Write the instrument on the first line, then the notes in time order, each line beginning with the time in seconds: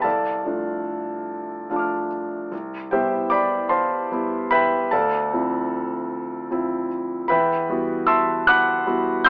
grand piano
0.02 C2 A4 D5 F5 A5
0.45 F3 A3 D4 F4
1.70 F3 A3 D4 F4 F5 A5
1.76 D6 F6
2.52 C2
2.91 G3 B3 E4 G4 C5 E5 G5
3.30 D5 G5 B5 D6
3.69 C5 F5 A5 C6
4.12 G3 B3 E4
4.51 B4 E5 G5 B5
4.91 D2 A4 D5 F5 A5
5.33 F3 C4 E4
6.51 F3 C4 E4
7.28 E2 B4 E5 G5 B5
7.69 G3 B3 E4 F#4
8.07 E5 A5 C6 E6
8.47 F#5 B5 D6 F#6
8.86 G3 B3 E4 F#4
9.24 E6 G6